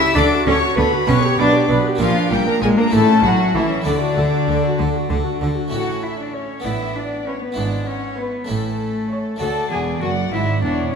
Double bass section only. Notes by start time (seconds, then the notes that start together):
0.16 D2
0.47 D2
0.77 D2
1.08 B1
1.38 B1
1.69 B1
2.00 A#1
2.31 A#1
2.62 A#1
2.93 A1
3.24 A1
3.55 A1
3.86 D2
4.17 D2
4.48 D2
4.79 D2
5.10 D2
5.41 D2
5.72 A1
6.64 A1
7.56 G#1
8.48 A1
9.40 D2
9.71 E1
10.01 F#1
10.33 G#1
10.63 E1